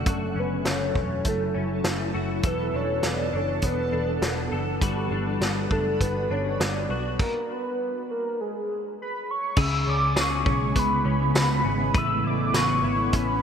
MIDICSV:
0, 0, Header, 1, 6, 480
1, 0, Start_track
1, 0, Tempo, 594059
1, 53, Time_signature, 4, 2, 24, 8
1, 10843, End_track
2, 0, Start_track
2, 0, Title_t, "Soft synth lead"
2, 0, Program_c, 0, 80
2, 78, Note_on_c, 0, 69, 81
2, 318, Note_on_c, 0, 71, 89
2, 330, Note_off_c, 0, 69, 0
2, 554, Note_on_c, 0, 73, 89
2, 566, Note_off_c, 0, 71, 0
2, 1032, Note_on_c, 0, 69, 79
2, 1045, Note_off_c, 0, 73, 0
2, 1742, Note_off_c, 0, 69, 0
2, 1991, Note_on_c, 0, 71, 88
2, 2230, Note_on_c, 0, 73, 91
2, 2242, Note_off_c, 0, 71, 0
2, 2468, Note_on_c, 0, 74, 95
2, 2480, Note_off_c, 0, 73, 0
2, 2715, Note_on_c, 0, 73, 87
2, 2727, Note_off_c, 0, 74, 0
2, 2952, Note_on_c, 0, 71, 86
2, 2964, Note_off_c, 0, 73, 0
2, 3662, Note_off_c, 0, 71, 0
2, 4621, Note_on_c, 0, 69, 78
2, 4840, Note_off_c, 0, 69, 0
2, 4857, Note_on_c, 0, 71, 84
2, 5103, Note_on_c, 0, 73, 92
2, 5115, Note_off_c, 0, 71, 0
2, 5341, Note_on_c, 0, 74, 102
2, 5353, Note_off_c, 0, 73, 0
2, 5697, Note_off_c, 0, 74, 0
2, 5829, Note_on_c, 0, 70, 91
2, 6074, Note_on_c, 0, 71, 92
2, 6087, Note_off_c, 0, 70, 0
2, 6552, Note_on_c, 0, 70, 78
2, 6564, Note_off_c, 0, 71, 0
2, 6794, Note_on_c, 0, 68, 69
2, 6806, Note_off_c, 0, 70, 0
2, 7263, Note_off_c, 0, 68, 0
2, 7288, Note_on_c, 0, 83, 80
2, 7521, Note_on_c, 0, 85, 83
2, 7534, Note_off_c, 0, 83, 0
2, 7761, Note_on_c, 0, 88, 98
2, 7773, Note_off_c, 0, 85, 0
2, 7987, Note_off_c, 0, 88, 0
2, 7994, Note_on_c, 0, 86, 83
2, 8249, Note_on_c, 0, 85, 84
2, 8261, Note_off_c, 0, 86, 0
2, 8719, Note_on_c, 0, 83, 86
2, 8731, Note_off_c, 0, 85, 0
2, 9186, Note_off_c, 0, 83, 0
2, 9197, Note_on_c, 0, 83, 92
2, 9677, Note_on_c, 0, 88, 98
2, 9690, Note_off_c, 0, 83, 0
2, 9905, Note_off_c, 0, 88, 0
2, 9913, Note_on_c, 0, 86, 91
2, 10147, Note_on_c, 0, 85, 91
2, 10159, Note_off_c, 0, 86, 0
2, 10628, Note_on_c, 0, 83, 91
2, 10640, Note_off_c, 0, 85, 0
2, 10843, Note_off_c, 0, 83, 0
2, 10843, End_track
3, 0, Start_track
3, 0, Title_t, "Clean electric guitar"
3, 0, Program_c, 1, 27
3, 0, Note_on_c, 1, 57, 48
3, 0, Note_on_c, 1, 61, 50
3, 52, Note_on_c, 1, 42, 70
3, 56, Note_on_c, 1, 66, 59
3, 287, Note_off_c, 1, 61, 0
3, 290, Note_on_c, 1, 61, 50
3, 529, Note_off_c, 1, 57, 0
3, 533, Note_on_c, 1, 57, 51
3, 759, Note_off_c, 1, 61, 0
3, 768, Note_on_c, 1, 61, 50
3, 1006, Note_off_c, 1, 57, 0
3, 1009, Note_on_c, 1, 57, 50
3, 1238, Note_off_c, 1, 61, 0
3, 1248, Note_on_c, 1, 61, 53
3, 1487, Note_off_c, 1, 57, 0
3, 1490, Note_on_c, 1, 57, 48
3, 1722, Note_off_c, 1, 66, 0
3, 1732, Note_on_c, 1, 66, 55
3, 1966, Note_on_c, 1, 52, 71
3, 1970, Note_off_c, 1, 66, 0
3, 1972, Note_off_c, 1, 42, 0
3, 1973, Note_on_c, 1, 69, 58
3, 2018, Note_off_c, 1, 61, 0
3, 2211, Note_on_c, 1, 62, 51
3, 2445, Note_off_c, 1, 57, 0
3, 2448, Note_on_c, 1, 59, 52
3, 2684, Note_off_c, 1, 62, 0
3, 2688, Note_on_c, 1, 62, 57
3, 2925, Note_off_c, 1, 59, 0
3, 2928, Note_on_c, 1, 59, 54
3, 3165, Note_off_c, 1, 62, 0
3, 3168, Note_on_c, 1, 62, 54
3, 3408, Note_off_c, 1, 59, 0
3, 3412, Note_on_c, 1, 59, 51
3, 3641, Note_off_c, 1, 69, 0
3, 3651, Note_on_c, 1, 69, 59
3, 3888, Note_off_c, 1, 52, 0
3, 3891, Note_off_c, 1, 69, 0
3, 3891, Note_on_c, 1, 55, 69
3, 3898, Note_on_c, 1, 66, 61
3, 4128, Note_off_c, 1, 62, 0
3, 4132, Note_on_c, 1, 62, 51
3, 4371, Note_off_c, 1, 59, 0
3, 4374, Note_on_c, 1, 59, 51
3, 4603, Note_off_c, 1, 62, 0
3, 4613, Note_on_c, 1, 62, 56
3, 4848, Note_off_c, 1, 59, 0
3, 4851, Note_on_c, 1, 59, 51
3, 5085, Note_off_c, 1, 62, 0
3, 5095, Note_on_c, 1, 62, 54
3, 5330, Note_off_c, 1, 59, 0
3, 5333, Note_on_c, 1, 59, 51
3, 5566, Note_off_c, 1, 66, 0
3, 5576, Note_on_c, 1, 66, 55
3, 5812, Note_off_c, 1, 55, 0
3, 5861, Note_off_c, 1, 62, 0
3, 5862, Note_off_c, 1, 66, 0
3, 6266, Note_off_c, 1, 59, 0
3, 7733, Note_on_c, 1, 49, 78
3, 7737, Note_on_c, 1, 68, 68
3, 7971, Note_on_c, 1, 61, 60
3, 8200, Note_off_c, 1, 68, 0
3, 8210, Note_on_c, 1, 68, 66
3, 8443, Note_off_c, 1, 61, 0
3, 8447, Note_on_c, 1, 61, 63
3, 8689, Note_on_c, 1, 59, 64
3, 8923, Note_off_c, 1, 61, 0
3, 8926, Note_on_c, 1, 61, 63
3, 9164, Note_off_c, 1, 59, 0
3, 9167, Note_on_c, 1, 59, 62
3, 9402, Note_off_c, 1, 61, 0
3, 9406, Note_on_c, 1, 61, 59
3, 9648, Note_on_c, 1, 57, 88
3, 9649, Note_off_c, 1, 68, 0
3, 9652, Note_on_c, 1, 71, 76
3, 9653, Note_off_c, 1, 49, 0
3, 9884, Note_off_c, 1, 61, 0
3, 9887, Note_on_c, 1, 64, 58
3, 10124, Note_off_c, 1, 71, 0
3, 10128, Note_on_c, 1, 71, 69
3, 10361, Note_off_c, 1, 64, 0
3, 10371, Note_on_c, 1, 64, 61
3, 10606, Note_off_c, 1, 59, 0
3, 10609, Note_on_c, 1, 61, 61
3, 10843, Note_off_c, 1, 57, 0
3, 10843, Note_off_c, 1, 61, 0
3, 10843, Note_off_c, 1, 64, 0
3, 10843, Note_off_c, 1, 71, 0
3, 10843, End_track
4, 0, Start_track
4, 0, Title_t, "Ambient pad"
4, 0, Program_c, 2, 92
4, 58, Note_on_c, 2, 54, 73
4, 59, Note_on_c, 2, 64, 66
4, 60, Note_on_c, 2, 69, 85
4, 1956, Note_off_c, 2, 54, 0
4, 1956, Note_off_c, 2, 64, 0
4, 1963, Note_on_c, 2, 52, 73
4, 1963, Note_on_c, 2, 59, 73
4, 1968, Note_on_c, 2, 62, 68
4, 3864, Note_off_c, 2, 69, 0
4, 3868, Note_off_c, 2, 52, 0
4, 3868, Note_off_c, 2, 59, 0
4, 3899, Note_on_c, 2, 55, 75
4, 3899, Note_on_c, 2, 66, 68
4, 3901, Note_on_c, 2, 71, 84
4, 5778, Note_off_c, 2, 62, 0
4, 5796, Note_off_c, 2, 55, 0
4, 5796, Note_off_c, 2, 66, 0
4, 5797, Note_off_c, 2, 71, 0
4, 7739, Note_on_c, 2, 64, 88
4, 7740, Note_on_c, 2, 56, 73
4, 7747, Note_on_c, 2, 49, 80
4, 7747, Note_on_c, 2, 59, 69
4, 9637, Note_off_c, 2, 56, 0
4, 9637, Note_off_c, 2, 64, 0
4, 9640, Note_off_c, 2, 59, 0
4, 9641, Note_off_c, 2, 49, 0
4, 9651, Note_on_c, 2, 59, 71
4, 9652, Note_on_c, 2, 61, 92
4, 9655, Note_on_c, 2, 57, 87
4, 10843, Note_off_c, 2, 57, 0
4, 10843, Note_off_c, 2, 59, 0
4, 10843, Note_off_c, 2, 61, 0
4, 10843, End_track
5, 0, Start_track
5, 0, Title_t, "Picked electric bass"
5, 0, Program_c, 3, 34
5, 49, Note_on_c, 3, 30, 81
5, 262, Note_off_c, 3, 30, 0
5, 289, Note_on_c, 3, 30, 82
5, 502, Note_off_c, 3, 30, 0
5, 532, Note_on_c, 3, 30, 80
5, 743, Note_off_c, 3, 30, 0
5, 770, Note_on_c, 3, 28, 75
5, 982, Note_off_c, 3, 28, 0
5, 1014, Note_on_c, 3, 30, 83
5, 1225, Note_off_c, 3, 30, 0
5, 1258, Note_on_c, 3, 30, 80
5, 1467, Note_off_c, 3, 30, 0
5, 1493, Note_on_c, 3, 30, 71
5, 1704, Note_off_c, 3, 30, 0
5, 1737, Note_on_c, 3, 30, 72
5, 1946, Note_off_c, 3, 30, 0
5, 1967, Note_on_c, 3, 28, 81
5, 2181, Note_off_c, 3, 28, 0
5, 2212, Note_on_c, 3, 28, 86
5, 2424, Note_off_c, 3, 28, 0
5, 2459, Note_on_c, 3, 28, 76
5, 2667, Note_off_c, 3, 28, 0
5, 2696, Note_on_c, 3, 30, 73
5, 2905, Note_off_c, 3, 30, 0
5, 2933, Note_on_c, 3, 28, 85
5, 3144, Note_off_c, 3, 28, 0
5, 3169, Note_on_c, 3, 28, 86
5, 3382, Note_off_c, 3, 28, 0
5, 3405, Note_on_c, 3, 28, 75
5, 3619, Note_off_c, 3, 28, 0
5, 3654, Note_on_c, 3, 30, 80
5, 3864, Note_off_c, 3, 30, 0
5, 3892, Note_on_c, 3, 31, 90
5, 4104, Note_off_c, 3, 31, 0
5, 4127, Note_on_c, 3, 31, 87
5, 4341, Note_off_c, 3, 31, 0
5, 4369, Note_on_c, 3, 31, 82
5, 4582, Note_off_c, 3, 31, 0
5, 4610, Note_on_c, 3, 30, 70
5, 4822, Note_off_c, 3, 30, 0
5, 4853, Note_on_c, 3, 31, 82
5, 5064, Note_off_c, 3, 31, 0
5, 5092, Note_on_c, 3, 31, 80
5, 5304, Note_off_c, 3, 31, 0
5, 5335, Note_on_c, 3, 31, 77
5, 5545, Note_off_c, 3, 31, 0
5, 5571, Note_on_c, 3, 35, 78
5, 5782, Note_off_c, 3, 35, 0
5, 7734, Note_on_c, 3, 37, 106
5, 7945, Note_off_c, 3, 37, 0
5, 7979, Note_on_c, 3, 37, 105
5, 8187, Note_off_c, 3, 37, 0
5, 8456, Note_on_c, 3, 35, 90
5, 8665, Note_off_c, 3, 35, 0
5, 8695, Note_on_c, 3, 37, 103
5, 8905, Note_off_c, 3, 37, 0
5, 8932, Note_on_c, 3, 37, 101
5, 9143, Note_off_c, 3, 37, 0
5, 9170, Note_on_c, 3, 37, 94
5, 9382, Note_off_c, 3, 37, 0
5, 9411, Note_on_c, 3, 32, 87
5, 9623, Note_off_c, 3, 32, 0
5, 9655, Note_on_c, 3, 33, 104
5, 9865, Note_off_c, 3, 33, 0
5, 9883, Note_on_c, 3, 33, 103
5, 10098, Note_off_c, 3, 33, 0
5, 10130, Note_on_c, 3, 33, 95
5, 10342, Note_off_c, 3, 33, 0
5, 10368, Note_on_c, 3, 32, 91
5, 10581, Note_off_c, 3, 32, 0
5, 10611, Note_on_c, 3, 33, 95
5, 10823, Note_off_c, 3, 33, 0
5, 10843, End_track
6, 0, Start_track
6, 0, Title_t, "Drums"
6, 50, Note_on_c, 9, 36, 96
6, 50, Note_on_c, 9, 42, 62
6, 131, Note_off_c, 9, 36, 0
6, 131, Note_off_c, 9, 42, 0
6, 527, Note_on_c, 9, 38, 85
6, 528, Note_on_c, 9, 42, 61
6, 607, Note_off_c, 9, 38, 0
6, 608, Note_off_c, 9, 42, 0
6, 771, Note_on_c, 9, 36, 74
6, 852, Note_off_c, 9, 36, 0
6, 1007, Note_on_c, 9, 42, 62
6, 1011, Note_on_c, 9, 36, 75
6, 1088, Note_off_c, 9, 42, 0
6, 1092, Note_off_c, 9, 36, 0
6, 1488, Note_on_c, 9, 38, 95
6, 1490, Note_on_c, 9, 42, 66
6, 1569, Note_off_c, 9, 38, 0
6, 1571, Note_off_c, 9, 42, 0
6, 1965, Note_on_c, 9, 42, 65
6, 1968, Note_on_c, 9, 36, 97
6, 2045, Note_off_c, 9, 42, 0
6, 2049, Note_off_c, 9, 36, 0
6, 2447, Note_on_c, 9, 38, 81
6, 2448, Note_on_c, 9, 42, 59
6, 2527, Note_off_c, 9, 38, 0
6, 2528, Note_off_c, 9, 42, 0
6, 2924, Note_on_c, 9, 42, 61
6, 2929, Note_on_c, 9, 36, 68
6, 3004, Note_off_c, 9, 42, 0
6, 3010, Note_off_c, 9, 36, 0
6, 3410, Note_on_c, 9, 38, 101
6, 3412, Note_on_c, 9, 42, 65
6, 3491, Note_off_c, 9, 38, 0
6, 3493, Note_off_c, 9, 42, 0
6, 3890, Note_on_c, 9, 36, 92
6, 3893, Note_on_c, 9, 42, 65
6, 3971, Note_off_c, 9, 36, 0
6, 3974, Note_off_c, 9, 42, 0
6, 4374, Note_on_c, 9, 38, 79
6, 4375, Note_on_c, 9, 42, 59
6, 4455, Note_off_c, 9, 38, 0
6, 4456, Note_off_c, 9, 42, 0
6, 4612, Note_on_c, 9, 36, 79
6, 4693, Note_off_c, 9, 36, 0
6, 4853, Note_on_c, 9, 36, 72
6, 4855, Note_on_c, 9, 42, 66
6, 4934, Note_off_c, 9, 36, 0
6, 4936, Note_off_c, 9, 42, 0
6, 5336, Note_on_c, 9, 38, 94
6, 5338, Note_on_c, 9, 42, 66
6, 5417, Note_off_c, 9, 38, 0
6, 5418, Note_off_c, 9, 42, 0
6, 5813, Note_on_c, 9, 36, 92
6, 5814, Note_on_c, 9, 49, 72
6, 5894, Note_off_c, 9, 36, 0
6, 5895, Note_off_c, 9, 49, 0
6, 7728, Note_on_c, 9, 49, 97
6, 7732, Note_on_c, 9, 36, 106
6, 7809, Note_off_c, 9, 49, 0
6, 7812, Note_off_c, 9, 36, 0
6, 8211, Note_on_c, 9, 38, 94
6, 8212, Note_on_c, 9, 42, 70
6, 8215, Note_on_c, 9, 54, 70
6, 8292, Note_off_c, 9, 38, 0
6, 8293, Note_off_c, 9, 42, 0
6, 8295, Note_off_c, 9, 54, 0
6, 8452, Note_on_c, 9, 36, 93
6, 8533, Note_off_c, 9, 36, 0
6, 8690, Note_on_c, 9, 42, 73
6, 8692, Note_on_c, 9, 36, 81
6, 8771, Note_off_c, 9, 42, 0
6, 8773, Note_off_c, 9, 36, 0
6, 9172, Note_on_c, 9, 54, 67
6, 9175, Note_on_c, 9, 38, 117
6, 9177, Note_on_c, 9, 42, 76
6, 9253, Note_off_c, 9, 54, 0
6, 9256, Note_off_c, 9, 38, 0
6, 9257, Note_off_c, 9, 42, 0
6, 9652, Note_on_c, 9, 36, 116
6, 9652, Note_on_c, 9, 42, 75
6, 9732, Note_off_c, 9, 36, 0
6, 9733, Note_off_c, 9, 42, 0
6, 10133, Note_on_c, 9, 38, 94
6, 10134, Note_on_c, 9, 42, 67
6, 10136, Note_on_c, 9, 54, 64
6, 10214, Note_off_c, 9, 38, 0
6, 10215, Note_off_c, 9, 42, 0
6, 10217, Note_off_c, 9, 54, 0
6, 10608, Note_on_c, 9, 42, 70
6, 10612, Note_on_c, 9, 36, 80
6, 10688, Note_off_c, 9, 42, 0
6, 10692, Note_off_c, 9, 36, 0
6, 10843, End_track
0, 0, End_of_file